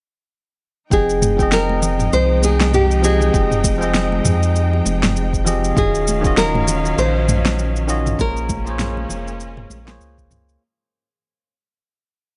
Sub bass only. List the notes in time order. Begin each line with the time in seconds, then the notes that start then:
0.91 F1
2.13 C2
3.34 F1
4.25 F2
4.86 F1
5.77 D#1
6.98 A#1
8.19 A#1
9.10 F1
9.70 A#1
10.01 C#2